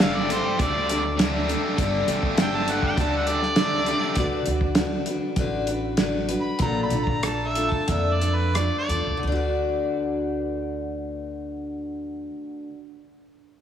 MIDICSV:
0, 0, Header, 1, 7, 480
1, 0, Start_track
1, 0, Key_signature, 2, "major"
1, 0, Tempo, 596421
1, 1429, Time_signature, 4, 2, 24, 8
1, 4313, Tempo, 622407
1, 5753, Tempo, 669643
1, 7193, Tempo, 702576
1, 10184, End_track
2, 0, Start_track
2, 0, Title_t, "Harmonica"
2, 0, Program_c, 0, 22
2, 15, Note_on_c, 0, 77, 82
2, 134, Note_on_c, 0, 74, 78
2, 146, Note_off_c, 0, 77, 0
2, 235, Note_off_c, 0, 74, 0
2, 255, Note_on_c, 0, 72, 78
2, 476, Note_off_c, 0, 72, 0
2, 487, Note_on_c, 0, 74, 85
2, 944, Note_off_c, 0, 74, 0
2, 1939, Note_on_c, 0, 79, 87
2, 2054, Note_on_c, 0, 81, 84
2, 2066, Note_off_c, 0, 79, 0
2, 2183, Note_on_c, 0, 78, 79
2, 2195, Note_off_c, 0, 81, 0
2, 2278, Note_off_c, 0, 78, 0
2, 2307, Note_on_c, 0, 79, 91
2, 2421, Note_on_c, 0, 81, 80
2, 2434, Note_off_c, 0, 79, 0
2, 2517, Note_off_c, 0, 81, 0
2, 2548, Note_on_c, 0, 78, 81
2, 2640, Note_on_c, 0, 74, 107
2, 2652, Note_off_c, 0, 78, 0
2, 3565, Note_off_c, 0, 74, 0
2, 5121, Note_on_c, 0, 83, 78
2, 5268, Note_off_c, 0, 83, 0
2, 5281, Note_on_c, 0, 82, 83
2, 5430, Note_off_c, 0, 82, 0
2, 5446, Note_on_c, 0, 83, 85
2, 5613, Note_on_c, 0, 82, 74
2, 5624, Note_off_c, 0, 83, 0
2, 5760, Note_off_c, 0, 82, 0
2, 5773, Note_on_c, 0, 81, 75
2, 5927, Note_on_c, 0, 76, 88
2, 5938, Note_off_c, 0, 81, 0
2, 6093, Note_on_c, 0, 81, 76
2, 6104, Note_off_c, 0, 76, 0
2, 6237, Note_on_c, 0, 76, 73
2, 6248, Note_off_c, 0, 81, 0
2, 6399, Note_on_c, 0, 74, 74
2, 6409, Note_off_c, 0, 76, 0
2, 6554, Note_on_c, 0, 71, 80
2, 6565, Note_off_c, 0, 74, 0
2, 6709, Note_on_c, 0, 74, 72
2, 6720, Note_off_c, 0, 71, 0
2, 6863, Note_off_c, 0, 74, 0
2, 6867, Note_on_c, 0, 74, 80
2, 7187, Note_off_c, 0, 74, 0
2, 10184, End_track
3, 0, Start_track
3, 0, Title_t, "Steel-string acoustic guitar"
3, 0, Program_c, 1, 25
3, 0, Note_on_c, 1, 55, 60
3, 2, Note_on_c, 1, 62, 60
3, 12, Note_on_c, 1, 67, 55
3, 18, Note_on_c, 1, 69, 69
3, 225, Note_off_c, 1, 69, 0
3, 232, Note_off_c, 1, 55, 0
3, 235, Note_on_c, 1, 69, 54
3, 236, Note_off_c, 1, 62, 0
3, 237, Note_off_c, 1, 67, 0
3, 247, Note_on_c, 1, 67, 57
3, 261, Note_on_c, 1, 62, 43
3, 472, Note_off_c, 1, 62, 0
3, 473, Note_off_c, 1, 69, 0
3, 477, Note_on_c, 1, 55, 67
3, 479, Note_off_c, 1, 67, 0
3, 481, Note_on_c, 1, 62, 71
3, 488, Note_on_c, 1, 67, 75
3, 495, Note_on_c, 1, 69, 73
3, 710, Note_off_c, 1, 69, 0
3, 713, Note_off_c, 1, 55, 0
3, 716, Note_off_c, 1, 62, 0
3, 719, Note_off_c, 1, 67, 0
3, 720, Note_on_c, 1, 69, 49
3, 732, Note_on_c, 1, 67, 45
3, 742, Note_on_c, 1, 62, 47
3, 955, Note_off_c, 1, 69, 0
3, 958, Note_on_c, 1, 55, 50
3, 961, Note_off_c, 1, 62, 0
3, 961, Note_off_c, 1, 67, 0
3, 971, Note_on_c, 1, 62, 56
3, 977, Note_on_c, 1, 67, 58
3, 982, Note_on_c, 1, 69, 58
3, 1183, Note_off_c, 1, 69, 0
3, 1193, Note_on_c, 1, 69, 54
3, 1194, Note_off_c, 1, 55, 0
3, 1198, Note_off_c, 1, 67, 0
3, 1200, Note_off_c, 1, 62, 0
3, 1208, Note_on_c, 1, 67, 47
3, 1217, Note_on_c, 1, 62, 47
3, 1431, Note_off_c, 1, 69, 0
3, 1432, Note_off_c, 1, 62, 0
3, 1435, Note_on_c, 1, 55, 74
3, 1436, Note_off_c, 1, 67, 0
3, 1442, Note_on_c, 1, 62, 90
3, 1445, Note_on_c, 1, 67, 94
3, 1456, Note_on_c, 1, 69, 100
3, 1659, Note_off_c, 1, 69, 0
3, 1669, Note_off_c, 1, 67, 0
3, 1669, Note_on_c, 1, 69, 53
3, 1672, Note_off_c, 1, 55, 0
3, 1675, Note_off_c, 1, 62, 0
3, 1679, Note_on_c, 1, 67, 51
3, 1696, Note_on_c, 1, 62, 44
3, 1909, Note_off_c, 1, 69, 0
3, 1912, Note_off_c, 1, 62, 0
3, 1913, Note_on_c, 1, 55, 60
3, 1914, Note_off_c, 1, 67, 0
3, 1922, Note_on_c, 1, 62, 61
3, 1929, Note_on_c, 1, 67, 61
3, 1943, Note_on_c, 1, 69, 65
3, 2147, Note_off_c, 1, 69, 0
3, 2151, Note_off_c, 1, 55, 0
3, 2155, Note_off_c, 1, 62, 0
3, 2157, Note_on_c, 1, 69, 61
3, 2159, Note_off_c, 1, 67, 0
3, 2173, Note_on_c, 1, 67, 50
3, 2184, Note_on_c, 1, 62, 49
3, 2392, Note_off_c, 1, 69, 0
3, 2400, Note_off_c, 1, 62, 0
3, 2400, Note_on_c, 1, 55, 76
3, 2401, Note_off_c, 1, 67, 0
3, 2409, Note_on_c, 1, 62, 82
3, 2413, Note_on_c, 1, 67, 72
3, 2417, Note_on_c, 1, 69, 78
3, 2623, Note_off_c, 1, 69, 0
3, 2632, Note_on_c, 1, 69, 52
3, 2634, Note_off_c, 1, 55, 0
3, 2634, Note_off_c, 1, 67, 0
3, 2639, Note_off_c, 1, 62, 0
3, 2644, Note_on_c, 1, 67, 43
3, 2659, Note_on_c, 1, 62, 41
3, 2870, Note_off_c, 1, 69, 0
3, 2872, Note_off_c, 1, 62, 0
3, 2874, Note_on_c, 1, 55, 52
3, 2876, Note_off_c, 1, 67, 0
3, 2882, Note_on_c, 1, 62, 60
3, 2893, Note_on_c, 1, 67, 55
3, 2901, Note_on_c, 1, 69, 54
3, 3106, Note_off_c, 1, 69, 0
3, 3111, Note_off_c, 1, 55, 0
3, 3115, Note_off_c, 1, 62, 0
3, 3115, Note_on_c, 1, 69, 51
3, 3120, Note_off_c, 1, 67, 0
3, 3133, Note_on_c, 1, 67, 48
3, 3141, Note_on_c, 1, 62, 41
3, 3350, Note_off_c, 1, 62, 0
3, 3351, Note_off_c, 1, 69, 0
3, 3355, Note_on_c, 1, 50, 77
3, 3360, Note_off_c, 1, 67, 0
3, 3360, Note_on_c, 1, 62, 92
3, 3361, Note_on_c, 1, 57, 86
3, 3367, Note_on_c, 1, 66, 91
3, 3370, Note_on_c, 1, 71, 89
3, 3588, Note_off_c, 1, 71, 0
3, 3591, Note_off_c, 1, 50, 0
3, 3594, Note_off_c, 1, 57, 0
3, 3594, Note_off_c, 1, 62, 0
3, 3598, Note_off_c, 1, 66, 0
3, 3598, Note_on_c, 1, 71, 52
3, 3615, Note_on_c, 1, 66, 54
3, 3624, Note_on_c, 1, 62, 42
3, 3834, Note_off_c, 1, 62, 0
3, 3834, Note_off_c, 1, 71, 0
3, 3836, Note_on_c, 1, 57, 62
3, 3842, Note_off_c, 1, 66, 0
3, 3843, Note_on_c, 1, 62, 60
3, 3850, Note_on_c, 1, 66, 73
3, 3859, Note_on_c, 1, 71, 67
3, 4065, Note_off_c, 1, 71, 0
3, 4074, Note_off_c, 1, 57, 0
3, 4075, Note_on_c, 1, 71, 59
3, 4078, Note_off_c, 1, 62, 0
3, 4081, Note_off_c, 1, 66, 0
3, 4090, Note_on_c, 1, 66, 56
3, 4106, Note_on_c, 1, 62, 50
3, 4316, Note_off_c, 1, 71, 0
3, 4323, Note_off_c, 1, 66, 0
3, 4324, Note_on_c, 1, 50, 83
3, 4326, Note_off_c, 1, 62, 0
3, 4327, Note_on_c, 1, 57, 76
3, 4335, Note_on_c, 1, 62, 82
3, 4337, Note_on_c, 1, 66, 90
3, 4339, Note_on_c, 1, 71, 93
3, 4546, Note_off_c, 1, 71, 0
3, 4553, Note_off_c, 1, 50, 0
3, 4555, Note_off_c, 1, 57, 0
3, 4556, Note_on_c, 1, 71, 51
3, 4558, Note_off_c, 1, 66, 0
3, 4559, Note_off_c, 1, 62, 0
3, 4567, Note_on_c, 1, 66, 44
3, 4581, Note_on_c, 1, 62, 43
3, 4787, Note_off_c, 1, 62, 0
3, 4788, Note_off_c, 1, 71, 0
3, 4788, Note_on_c, 1, 57, 57
3, 4794, Note_off_c, 1, 66, 0
3, 4796, Note_on_c, 1, 62, 61
3, 4805, Note_on_c, 1, 66, 63
3, 4812, Note_on_c, 1, 71, 69
3, 5018, Note_off_c, 1, 71, 0
3, 5025, Note_off_c, 1, 57, 0
3, 5027, Note_on_c, 1, 71, 51
3, 5029, Note_off_c, 1, 62, 0
3, 5033, Note_off_c, 1, 66, 0
3, 5042, Note_on_c, 1, 66, 43
3, 5054, Note_on_c, 1, 62, 45
3, 5266, Note_off_c, 1, 71, 0
3, 5271, Note_off_c, 1, 62, 0
3, 5272, Note_on_c, 1, 46, 78
3, 5273, Note_off_c, 1, 66, 0
3, 5273, Note_on_c, 1, 50, 83
3, 5274, Note_on_c, 1, 57, 75
3, 5280, Note_on_c, 1, 62, 80
3, 5283, Note_on_c, 1, 65, 78
3, 5286, Note_on_c, 1, 69, 83
3, 5507, Note_off_c, 1, 69, 0
3, 5511, Note_off_c, 1, 46, 0
3, 5511, Note_off_c, 1, 65, 0
3, 5512, Note_off_c, 1, 50, 0
3, 5512, Note_off_c, 1, 57, 0
3, 5515, Note_off_c, 1, 62, 0
3, 5516, Note_on_c, 1, 69, 49
3, 5520, Note_on_c, 1, 65, 41
3, 5531, Note_on_c, 1, 62, 41
3, 5537, Note_on_c, 1, 57, 39
3, 5746, Note_off_c, 1, 57, 0
3, 5755, Note_on_c, 1, 57, 53
3, 5757, Note_off_c, 1, 69, 0
3, 5759, Note_off_c, 1, 65, 0
3, 5760, Note_off_c, 1, 62, 0
3, 5768, Note_on_c, 1, 62, 57
3, 5776, Note_on_c, 1, 65, 58
3, 5781, Note_on_c, 1, 69, 54
3, 5981, Note_off_c, 1, 69, 0
3, 5986, Note_off_c, 1, 57, 0
3, 5989, Note_off_c, 1, 65, 0
3, 5990, Note_on_c, 1, 69, 54
3, 5992, Note_off_c, 1, 62, 0
3, 5998, Note_on_c, 1, 65, 48
3, 6006, Note_on_c, 1, 62, 48
3, 6014, Note_on_c, 1, 57, 45
3, 6222, Note_off_c, 1, 57, 0
3, 6222, Note_off_c, 1, 69, 0
3, 6223, Note_off_c, 1, 62, 0
3, 6224, Note_on_c, 1, 46, 75
3, 6226, Note_off_c, 1, 65, 0
3, 6231, Note_on_c, 1, 50, 74
3, 6231, Note_on_c, 1, 57, 75
3, 6232, Note_on_c, 1, 62, 69
3, 6238, Note_on_c, 1, 65, 73
3, 6238, Note_on_c, 1, 69, 73
3, 6450, Note_off_c, 1, 69, 0
3, 6456, Note_off_c, 1, 65, 0
3, 6458, Note_on_c, 1, 69, 45
3, 6460, Note_off_c, 1, 46, 0
3, 6463, Note_off_c, 1, 50, 0
3, 6463, Note_off_c, 1, 57, 0
3, 6464, Note_off_c, 1, 62, 0
3, 6464, Note_on_c, 1, 65, 43
3, 6471, Note_on_c, 1, 62, 40
3, 6478, Note_on_c, 1, 57, 32
3, 6682, Note_off_c, 1, 57, 0
3, 6691, Note_on_c, 1, 57, 47
3, 6694, Note_off_c, 1, 62, 0
3, 6699, Note_off_c, 1, 69, 0
3, 6700, Note_off_c, 1, 65, 0
3, 6702, Note_on_c, 1, 62, 44
3, 6709, Note_on_c, 1, 65, 56
3, 6716, Note_on_c, 1, 69, 57
3, 6930, Note_off_c, 1, 69, 0
3, 6937, Note_off_c, 1, 65, 0
3, 6939, Note_on_c, 1, 69, 50
3, 6940, Note_off_c, 1, 57, 0
3, 6944, Note_off_c, 1, 62, 0
3, 6945, Note_on_c, 1, 65, 46
3, 6952, Note_on_c, 1, 62, 41
3, 6961, Note_on_c, 1, 57, 39
3, 7147, Note_on_c, 1, 50, 70
3, 7181, Note_off_c, 1, 57, 0
3, 7189, Note_on_c, 1, 57, 76
3, 7191, Note_off_c, 1, 69, 0
3, 7194, Note_off_c, 1, 65, 0
3, 7198, Note_off_c, 1, 62, 0
3, 7219, Note_on_c, 1, 62, 79
3, 7251, Note_on_c, 1, 66, 84
3, 7275, Note_on_c, 1, 71, 84
3, 9541, Note_off_c, 1, 50, 0
3, 9581, Note_off_c, 1, 57, 0
3, 9610, Note_off_c, 1, 62, 0
3, 9642, Note_off_c, 1, 66, 0
3, 9666, Note_off_c, 1, 71, 0
3, 10184, End_track
4, 0, Start_track
4, 0, Title_t, "Overdriven electric guitar"
4, 0, Program_c, 2, 29
4, 0, Note_on_c, 2, 55, 97
4, 0, Note_on_c, 2, 57, 94
4, 5, Note_on_c, 2, 62, 108
4, 12, Note_on_c, 2, 69, 103
4, 220, Note_off_c, 2, 55, 0
4, 223, Note_on_c, 2, 55, 63
4, 229, Note_off_c, 2, 57, 0
4, 233, Note_on_c, 2, 57, 70
4, 234, Note_off_c, 2, 62, 0
4, 238, Note_on_c, 2, 62, 72
4, 239, Note_off_c, 2, 69, 0
4, 243, Note_on_c, 2, 69, 74
4, 343, Note_off_c, 2, 69, 0
4, 350, Note_off_c, 2, 62, 0
4, 352, Note_off_c, 2, 57, 0
4, 449, Note_off_c, 2, 55, 0
4, 458, Note_on_c, 2, 55, 69
4, 467, Note_on_c, 2, 57, 73
4, 473, Note_on_c, 2, 62, 73
4, 480, Note_on_c, 2, 69, 74
4, 577, Note_off_c, 2, 69, 0
4, 580, Note_on_c, 2, 69, 66
4, 592, Note_off_c, 2, 62, 0
4, 595, Note_on_c, 2, 62, 59
4, 604, Note_off_c, 2, 57, 0
4, 607, Note_on_c, 2, 57, 50
4, 821, Note_off_c, 2, 69, 0
4, 824, Note_off_c, 2, 55, 0
4, 825, Note_off_c, 2, 57, 0
4, 826, Note_off_c, 2, 62, 0
4, 940, Note_on_c, 2, 55, 75
4, 947, Note_on_c, 2, 57, 73
4, 958, Note_on_c, 2, 62, 83
4, 964, Note_on_c, 2, 69, 79
4, 1169, Note_off_c, 2, 55, 0
4, 1179, Note_on_c, 2, 55, 70
4, 1187, Note_off_c, 2, 57, 0
4, 1190, Note_on_c, 2, 57, 66
4, 1192, Note_off_c, 2, 62, 0
4, 1195, Note_on_c, 2, 62, 77
4, 1199, Note_off_c, 2, 69, 0
4, 1202, Note_on_c, 2, 69, 70
4, 1283, Note_off_c, 2, 69, 0
4, 1292, Note_on_c, 2, 69, 58
4, 1296, Note_off_c, 2, 62, 0
4, 1305, Note_on_c, 2, 62, 61
4, 1308, Note_off_c, 2, 57, 0
4, 1317, Note_on_c, 2, 57, 46
4, 1404, Note_off_c, 2, 55, 0
4, 1413, Note_off_c, 2, 57, 0
4, 1414, Note_on_c, 2, 55, 77
4, 1421, Note_off_c, 2, 62, 0
4, 1422, Note_on_c, 2, 57, 82
4, 1429, Note_off_c, 2, 69, 0
4, 1431, Note_on_c, 2, 62, 97
4, 1439, Note_on_c, 2, 69, 89
4, 1763, Note_off_c, 2, 69, 0
4, 1773, Note_on_c, 2, 69, 67
4, 1775, Note_off_c, 2, 62, 0
4, 1785, Note_on_c, 2, 62, 56
4, 1788, Note_off_c, 2, 57, 0
4, 1798, Note_on_c, 2, 57, 58
4, 1891, Note_off_c, 2, 55, 0
4, 1901, Note_on_c, 2, 55, 87
4, 1902, Note_off_c, 2, 57, 0
4, 1907, Note_off_c, 2, 62, 0
4, 1911, Note_on_c, 2, 57, 84
4, 1913, Note_off_c, 2, 69, 0
4, 1916, Note_on_c, 2, 62, 101
4, 1923, Note_on_c, 2, 69, 100
4, 2138, Note_off_c, 2, 55, 0
4, 2148, Note_on_c, 2, 55, 65
4, 2149, Note_off_c, 2, 57, 0
4, 2155, Note_off_c, 2, 62, 0
4, 2159, Note_on_c, 2, 57, 70
4, 2162, Note_off_c, 2, 69, 0
4, 2164, Note_on_c, 2, 62, 61
4, 2171, Note_on_c, 2, 69, 71
4, 2260, Note_off_c, 2, 62, 0
4, 2260, Note_off_c, 2, 69, 0
4, 2266, Note_off_c, 2, 57, 0
4, 2371, Note_off_c, 2, 55, 0
4, 2380, Note_on_c, 2, 55, 66
4, 2387, Note_on_c, 2, 57, 62
4, 2394, Note_on_c, 2, 62, 70
4, 2403, Note_on_c, 2, 69, 71
4, 2489, Note_off_c, 2, 69, 0
4, 2499, Note_on_c, 2, 69, 62
4, 2501, Note_off_c, 2, 62, 0
4, 2508, Note_off_c, 2, 57, 0
4, 2511, Note_on_c, 2, 62, 52
4, 2518, Note_on_c, 2, 57, 50
4, 2735, Note_off_c, 2, 69, 0
4, 2739, Note_off_c, 2, 57, 0
4, 2739, Note_off_c, 2, 62, 0
4, 2744, Note_off_c, 2, 55, 0
4, 2866, Note_on_c, 2, 55, 69
4, 2873, Note_on_c, 2, 57, 77
4, 2881, Note_on_c, 2, 62, 85
4, 2885, Note_on_c, 2, 69, 78
4, 3095, Note_off_c, 2, 55, 0
4, 3102, Note_off_c, 2, 57, 0
4, 3105, Note_on_c, 2, 55, 63
4, 3109, Note_off_c, 2, 62, 0
4, 3112, Note_on_c, 2, 57, 72
4, 3119, Note_off_c, 2, 69, 0
4, 3119, Note_on_c, 2, 62, 74
4, 3129, Note_on_c, 2, 69, 75
4, 3209, Note_off_c, 2, 69, 0
4, 3219, Note_on_c, 2, 69, 61
4, 3222, Note_off_c, 2, 62, 0
4, 3231, Note_on_c, 2, 62, 53
4, 3232, Note_off_c, 2, 57, 0
4, 3241, Note_on_c, 2, 57, 48
4, 3329, Note_off_c, 2, 69, 0
4, 3332, Note_off_c, 2, 55, 0
4, 3335, Note_off_c, 2, 62, 0
4, 3340, Note_off_c, 2, 57, 0
4, 10184, End_track
5, 0, Start_track
5, 0, Title_t, "Upright bass"
5, 0, Program_c, 3, 32
5, 0, Note_on_c, 3, 31, 70
5, 317, Note_off_c, 3, 31, 0
5, 475, Note_on_c, 3, 38, 88
5, 1227, Note_off_c, 3, 38, 0
5, 1433, Note_on_c, 3, 31, 93
5, 1620, Note_off_c, 3, 31, 0
5, 1670, Note_on_c, 3, 31, 76
5, 2235, Note_off_c, 3, 31, 0
5, 2390, Note_on_c, 3, 38, 76
5, 3144, Note_off_c, 3, 38, 0
5, 3346, Note_on_c, 3, 38, 83
5, 3536, Note_off_c, 3, 38, 0
5, 3596, Note_on_c, 3, 38, 76
5, 4164, Note_off_c, 3, 38, 0
5, 4316, Note_on_c, 3, 33, 83
5, 5063, Note_off_c, 3, 33, 0
5, 5267, Note_on_c, 3, 34, 81
5, 5457, Note_off_c, 3, 34, 0
5, 5506, Note_on_c, 3, 34, 80
5, 6071, Note_off_c, 3, 34, 0
5, 6225, Note_on_c, 3, 41, 82
5, 6793, Note_off_c, 3, 41, 0
5, 6943, Note_on_c, 3, 40, 77
5, 7055, Note_off_c, 3, 40, 0
5, 7069, Note_on_c, 3, 38, 70
5, 7182, Note_off_c, 3, 38, 0
5, 7195, Note_on_c, 3, 38, 76
5, 9266, Note_off_c, 3, 38, 0
5, 10184, End_track
6, 0, Start_track
6, 0, Title_t, "Muted overdriven electric guitar strokes"
6, 347, Note_on_c, 9, 29, 52
6, 427, Note_off_c, 9, 29, 0
6, 824, Note_on_c, 9, 29, 51
6, 905, Note_off_c, 9, 29, 0
6, 2269, Note_on_c, 9, 29, 49
6, 2350, Note_off_c, 9, 29, 0
6, 2745, Note_on_c, 9, 29, 49
6, 2825, Note_off_c, 9, 29, 0
6, 10184, End_track
7, 0, Start_track
7, 0, Title_t, "Drums"
7, 0, Note_on_c, 9, 38, 110
7, 0, Note_on_c, 9, 42, 79
7, 77, Note_off_c, 9, 42, 0
7, 81, Note_off_c, 9, 38, 0
7, 242, Note_on_c, 9, 42, 61
7, 322, Note_off_c, 9, 42, 0
7, 476, Note_on_c, 9, 36, 96
7, 479, Note_on_c, 9, 42, 79
7, 557, Note_off_c, 9, 36, 0
7, 559, Note_off_c, 9, 42, 0
7, 719, Note_on_c, 9, 42, 66
7, 799, Note_off_c, 9, 42, 0
7, 959, Note_on_c, 9, 42, 83
7, 962, Note_on_c, 9, 38, 96
7, 1039, Note_off_c, 9, 42, 0
7, 1043, Note_off_c, 9, 38, 0
7, 1202, Note_on_c, 9, 42, 55
7, 1283, Note_off_c, 9, 42, 0
7, 1433, Note_on_c, 9, 36, 90
7, 1435, Note_on_c, 9, 42, 81
7, 1514, Note_off_c, 9, 36, 0
7, 1516, Note_off_c, 9, 42, 0
7, 1673, Note_on_c, 9, 42, 62
7, 1754, Note_off_c, 9, 42, 0
7, 1793, Note_on_c, 9, 36, 72
7, 1873, Note_off_c, 9, 36, 0
7, 1912, Note_on_c, 9, 42, 90
7, 1915, Note_on_c, 9, 38, 106
7, 1992, Note_off_c, 9, 42, 0
7, 1996, Note_off_c, 9, 38, 0
7, 2155, Note_on_c, 9, 42, 59
7, 2235, Note_off_c, 9, 42, 0
7, 2272, Note_on_c, 9, 36, 72
7, 2353, Note_off_c, 9, 36, 0
7, 2392, Note_on_c, 9, 36, 89
7, 2395, Note_on_c, 9, 42, 76
7, 2472, Note_off_c, 9, 36, 0
7, 2475, Note_off_c, 9, 42, 0
7, 2630, Note_on_c, 9, 42, 56
7, 2711, Note_off_c, 9, 42, 0
7, 2756, Note_on_c, 9, 38, 32
7, 2836, Note_off_c, 9, 38, 0
7, 2864, Note_on_c, 9, 42, 70
7, 2867, Note_on_c, 9, 38, 100
7, 2945, Note_off_c, 9, 42, 0
7, 2948, Note_off_c, 9, 38, 0
7, 3109, Note_on_c, 9, 42, 54
7, 3190, Note_off_c, 9, 42, 0
7, 3344, Note_on_c, 9, 42, 70
7, 3349, Note_on_c, 9, 36, 86
7, 3424, Note_off_c, 9, 42, 0
7, 3429, Note_off_c, 9, 36, 0
7, 3586, Note_on_c, 9, 42, 52
7, 3667, Note_off_c, 9, 42, 0
7, 3709, Note_on_c, 9, 36, 70
7, 3789, Note_off_c, 9, 36, 0
7, 3822, Note_on_c, 9, 42, 74
7, 3825, Note_on_c, 9, 38, 103
7, 3902, Note_off_c, 9, 42, 0
7, 3906, Note_off_c, 9, 38, 0
7, 4071, Note_on_c, 9, 42, 55
7, 4152, Note_off_c, 9, 42, 0
7, 4315, Note_on_c, 9, 42, 66
7, 4317, Note_on_c, 9, 36, 92
7, 4392, Note_off_c, 9, 42, 0
7, 4394, Note_off_c, 9, 36, 0
7, 4552, Note_on_c, 9, 42, 64
7, 4630, Note_off_c, 9, 42, 0
7, 4786, Note_on_c, 9, 42, 73
7, 4789, Note_on_c, 9, 38, 92
7, 4863, Note_off_c, 9, 42, 0
7, 4866, Note_off_c, 9, 38, 0
7, 5028, Note_on_c, 9, 42, 59
7, 5105, Note_off_c, 9, 42, 0
7, 5260, Note_on_c, 9, 42, 72
7, 5267, Note_on_c, 9, 36, 96
7, 5337, Note_off_c, 9, 42, 0
7, 5344, Note_off_c, 9, 36, 0
7, 5505, Note_on_c, 9, 42, 57
7, 5582, Note_off_c, 9, 42, 0
7, 5632, Note_on_c, 9, 36, 68
7, 5709, Note_off_c, 9, 36, 0
7, 5755, Note_on_c, 9, 42, 74
7, 5758, Note_on_c, 9, 37, 103
7, 5826, Note_off_c, 9, 42, 0
7, 5829, Note_off_c, 9, 37, 0
7, 5988, Note_on_c, 9, 42, 63
7, 6060, Note_off_c, 9, 42, 0
7, 6104, Note_on_c, 9, 36, 64
7, 6176, Note_off_c, 9, 36, 0
7, 6220, Note_on_c, 9, 42, 77
7, 6223, Note_on_c, 9, 36, 84
7, 6291, Note_off_c, 9, 42, 0
7, 6295, Note_off_c, 9, 36, 0
7, 6461, Note_on_c, 9, 42, 60
7, 6533, Note_off_c, 9, 42, 0
7, 6701, Note_on_c, 9, 42, 73
7, 6704, Note_on_c, 9, 37, 93
7, 6773, Note_off_c, 9, 42, 0
7, 6776, Note_off_c, 9, 37, 0
7, 6949, Note_on_c, 9, 42, 48
7, 7021, Note_off_c, 9, 42, 0
7, 10184, End_track
0, 0, End_of_file